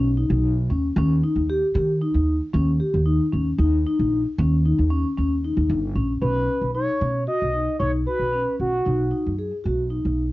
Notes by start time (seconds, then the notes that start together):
Already playing: B1
0.17 D#4
0.30 B1
0.70 D#2 C#4
0.96 D#2 C#4
1.24 D#4
1.36 D#2
1.50 G4
1.75 D#3 G4
2.02 D#4
2.14 D#2
2.54 D#2 C#4
2.80 G4
2.94 D#2
3.06 D#4
3.33 D#2 C#4
3.59 D#2 D#4
3.87 D#4
3.99 A#1
4.38 D#2 C#4
4.66 D#4
4.79 D#2
4.90 C#4
5.17 D#2 C#4
5.44 D#4
5.57 D#2
5.70 G1
5.95 A#1 C#4
6.21 B1 C#4 B4
6.61 B1
6.75 D#4 C#5
7.00 B2 C#4
7.27 F#4 D#5
7.42 B1
7.54 D#4
7.79 B1 D#4 C#5
8.07 F#4 B4
8.19 B1
8.33 C#4
8.60 B1 F#4
8.86 B1 D#4
9.11 D#4
9.26 F#2
9.39 G#4
9.64 B1 F#4
9.90 D#4
10.05 B1